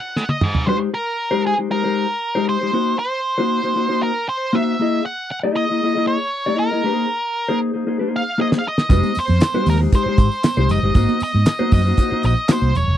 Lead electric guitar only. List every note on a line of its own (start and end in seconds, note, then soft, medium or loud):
0.00 0.30 F#5 loud
0.17 0.24 C5 medium
0.29 0.65 D#5 medium
0.44 0.68 C5 medium
0.69 0.76 C5 medium
0.94 1.42 A#4 medium
1.47 1.53 G#4 medium
1.72 2.44 A#4 medium
2.49 2.96 C5 medium
2.99 4.03 C5 loud
4.03 4.29 A#4 loud
4.29 4.55 C5 medium
4.55 5.02 E5 medium
5.06 5.30 F#5 medium
5.31 5.38 F#5 loud
5.56 6.07 D#5 loud
6.07 6.55 C#5 loud
6.59 7.58 A#4 medium
8.16 8.41 F5 loud
8.41 8.46 D#5 medium
8.59 8.65 F5 medium
8.68 9.19 D#5 medium
9.19 9.69 C5 loud
9.70 9.76 A#4 medium
9.95 10.73 C5 loud
10.71 11.22 D#5 medium
11.24 11.72 D#5 loud
11.74 12.21 D#5 medium
12.26 12.51 D#5 medium
12.51 12.77 C5 medium
12.77 12.98 C#5 medium